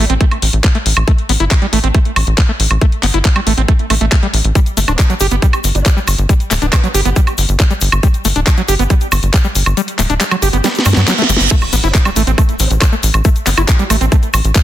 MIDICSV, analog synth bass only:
0, 0, Header, 1, 2, 480
1, 0, Start_track
1, 0, Key_signature, 0, "minor"
1, 0, Tempo, 434783
1, 1187, Time_signature, 4, 2, 24, 8
1, 16153, End_track
2, 0, Start_track
2, 0, Title_t, "Analog synth bass"
2, 0, Program_c, 0, 38
2, 108, Note_on_c, 0, 33, 85
2, 194, Note_off_c, 0, 33, 0
2, 467, Note_on_c, 0, 33, 91
2, 553, Note_off_c, 0, 33, 0
2, 587, Note_on_c, 0, 33, 82
2, 673, Note_off_c, 0, 33, 0
2, 947, Note_on_c, 0, 33, 99
2, 1034, Note_off_c, 0, 33, 0
2, 1068, Note_on_c, 0, 33, 83
2, 1154, Note_off_c, 0, 33, 0
2, 1427, Note_on_c, 0, 33, 93
2, 1514, Note_off_c, 0, 33, 0
2, 1547, Note_on_c, 0, 31, 81
2, 1634, Note_off_c, 0, 31, 0
2, 1907, Note_on_c, 0, 33, 92
2, 1993, Note_off_c, 0, 33, 0
2, 2027, Note_on_c, 0, 33, 83
2, 2113, Note_off_c, 0, 33, 0
2, 2387, Note_on_c, 0, 33, 88
2, 2473, Note_off_c, 0, 33, 0
2, 2507, Note_on_c, 0, 33, 84
2, 2593, Note_off_c, 0, 33, 0
2, 2867, Note_on_c, 0, 33, 98
2, 2953, Note_off_c, 0, 33, 0
2, 2987, Note_on_c, 0, 33, 88
2, 3073, Note_off_c, 0, 33, 0
2, 3348, Note_on_c, 0, 31, 91
2, 3434, Note_off_c, 0, 31, 0
2, 3467, Note_on_c, 0, 31, 79
2, 3553, Note_off_c, 0, 31, 0
2, 3827, Note_on_c, 0, 33, 95
2, 3914, Note_off_c, 0, 33, 0
2, 3948, Note_on_c, 0, 33, 86
2, 4034, Note_off_c, 0, 33, 0
2, 4307, Note_on_c, 0, 33, 94
2, 4393, Note_off_c, 0, 33, 0
2, 4427, Note_on_c, 0, 33, 83
2, 4513, Note_off_c, 0, 33, 0
2, 4787, Note_on_c, 0, 33, 97
2, 4873, Note_off_c, 0, 33, 0
2, 4907, Note_on_c, 0, 33, 80
2, 4993, Note_off_c, 0, 33, 0
2, 5267, Note_on_c, 0, 31, 94
2, 5353, Note_off_c, 0, 31, 0
2, 5387, Note_on_c, 0, 26, 81
2, 5474, Note_off_c, 0, 26, 0
2, 5747, Note_on_c, 0, 31, 90
2, 5833, Note_off_c, 0, 31, 0
2, 5867, Note_on_c, 0, 31, 82
2, 5953, Note_off_c, 0, 31, 0
2, 6227, Note_on_c, 0, 31, 88
2, 6313, Note_off_c, 0, 31, 0
2, 6347, Note_on_c, 0, 31, 80
2, 6434, Note_off_c, 0, 31, 0
2, 6707, Note_on_c, 0, 31, 93
2, 6794, Note_off_c, 0, 31, 0
2, 6828, Note_on_c, 0, 31, 85
2, 6914, Note_off_c, 0, 31, 0
2, 7187, Note_on_c, 0, 26, 91
2, 7274, Note_off_c, 0, 26, 0
2, 7308, Note_on_c, 0, 26, 84
2, 7394, Note_off_c, 0, 26, 0
2, 7667, Note_on_c, 0, 31, 91
2, 7753, Note_off_c, 0, 31, 0
2, 7787, Note_on_c, 0, 31, 82
2, 7874, Note_off_c, 0, 31, 0
2, 8147, Note_on_c, 0, 31, 92
2, 8234, Note_off_c, 0, 31, 0
2, 8268, Note_on_c, 0, 31, 81
2, 8354, Note_off_c, 0, 31, 0
2, 8628, Note_on_c, 0, 31, 96
2, 8714, Note_off_c, 0, 31, 0
2, 8747, Note_on_c, 0, 31, 81
2, 8834, Note_off_c, 0, 31, 0
2, 9108, Note_on_c, 0, 31, 94
2, 9194, Note_off_c, 0, 31, 0
2, 9228, Note_on_c, 0, 26, 81
2, 9314, Note_off_c, 0, 26, 0
2, 9587, Note_on_c, 0, 31, 93
2, 9673, Note_off_c, 0, 31, 0
2, 9707, Note_on_c, 0, 31, 86
2, 9794, Note_off_c, 0, 31, 0
2, 10068, Note_on_c, 0, 31, 94
2, 10154, Note_off_c, 0, 31, 0
2, 10188, Note_on_c, 0, 31, 85
2, 10274, Note_off_c, 0, 31, 0
2, 10548, Note_on_c, 0, 31, 96
2, 10634, Note_off_c, 0, 31, 0
2, 10667, Note_on_c, 0, 31, 86
2, 10754, Note_off_c, 0, 31, 0
2, 11027, Note_on_c, 0, 26, 94
2, 11114, Note_off_c, 0, 26, 0
2, 11148, Note_on_c, 0, 26, 79
2, 11234, Note_off_c, 0, 26, 0
2, 11508, Note_on_c, 0, 31, 93
2, 11594, Note_off_c, 0, 31, 0
2, 11627, Note_on_c, 0, 31, 81
2, 11713, Note_off_c, 0, 31, 0
2, 11988, Note_on_c, 0, 43, 94
2, 12074, Note_off_c, 0, 43, 0
2, 12108, Note_on_c, 0, 43, 79
2, 12194, Note_off_c, 0, 43, 0
2, 12468, Note_on_c, 0, 31, 97
2, 12554, Note_off_c, 0, 31, 0
2, 12588, Note_on_c, 0, 31, 85
2, 12674, Note_off_c, 0, 31, 0
2, 12948, Note_on_c, 0, 33, 97
2, 13034, Note_off_c, 0, 33, 0
2, 13068, Note_on_c, 0, 31, 81
2, 13154, Note_off_c, 0, 31, 0
2, 13428, Note_on_c, 0, 33, 92
2, 13514, Note_off_c, 0, 33, 0
2, 13548, Note_on_c, 0, 33, 86
2, 13634, Note_off_c, 0, 33, 0
2, 13907, Note_on_c, 0, 33, 93
2, 13993, Note_off_c, 0, 33, 0
2, 14028, Note_on_c, 0, 33, 82
2, 14114, Note_off_c, 0, 33, 0
2, 14387, Note_on_c, 0, 33, 95
2, 14473, Note_off_c, 0, 33, 0
2, 14507, Note_on_c, 0, 33, 86
2, 14594, Note_off_c, 0, 33, 0
2, 14867, Note_on_c, 0, 31, 96
2, 14953, Note_off_c, 0, 31, 0
2, 14987, Note_on_c, 0, 31, 82
2, 15074, Note_off_c, 0, 31, 0
2, 15347, Note_on_c, 0, 33, 91
2, 15434, Note_off_c, 0, 33, 0
2, 15468, Note_on_c, 0, 33, 85
2, 15554, Note_off_c, 0, 33, 0
2, 15828, Note_on_c, 0, 33, 91
2, 15914, Note_off_c, 0, 33, 0
2, 15947, Note_on_c, 0, 33, 81
2, 16033, Note_off_c, 0, 33, 0
2, 16153, End_track
0, 0, End_of_file